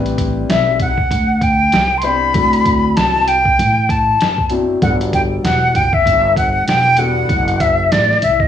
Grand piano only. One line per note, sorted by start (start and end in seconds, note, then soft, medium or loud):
0.00 0.86 G3 medium
0.00 0.87 C4 medium
0.00 0.87 D4 medium
0.00 0.87 E4 medium
0.00 0.87 B4 medium
2.03 2.29 G3 medium
2.03 2.29 C4 medium
2.03 2.29 D4 medium
2.03 2.30 E4 medium
2.03 2.30 C5 medium
2.34 3.34 F#3 medium
2.34 3.34 C4 medium
2.34 3.35 D4 medium
2.34 3.35 E4 medium
2.34 3.35 A4 medium
4.50 4.76 F#3 medium
4.50 4.76 C4 medium
4.50 4.77 D4 medium
4.50 4.77 E4 medium
4.50 4.77 F#4 medium
4.81 5.82 F#3 medium
4.81 5.82 G3 medium
4.81 5.82 B3 medium
4.81 5.82 D4 medium
4.81 5.82 A4 medium
6.98 7.24 G3 medium
6.98 7.24 B3 medium
6.98 7.24 D4 medium
6.98 7.24 F#4 medium
6.98 7.24 A4 medium